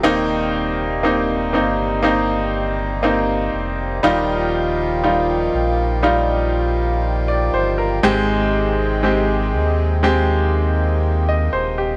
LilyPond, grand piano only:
<<
  \new Staff \with { instrumentName = "Grand piano" } { \time 4/4 \key ees \major \tempo 4 = 60 << { r1 | r2. r16 d''16 c''16 bes'16~ | bes'16 r2. ees''16 c''16 g'16 | } \\ { <bes c' ees'>4 <bes c' ees'>8 <bes c' ees'>8 <bes c' ees'>4 <bes c' ees'>4 | <g ees' f'>4 <g ees' f'>4 <g ees' f'>4 r4 | <aes c' g'>4 <aes c' g'>4 <aes c' g'>4 r4 | } >> }
  \new Staff \with { instrumentName = "Grand piano" } { \clef bass \time 4/4 \key ees \major ees4. r2 r8 | ees4. r2 r8 | aes,4. r2 r8 | }
>>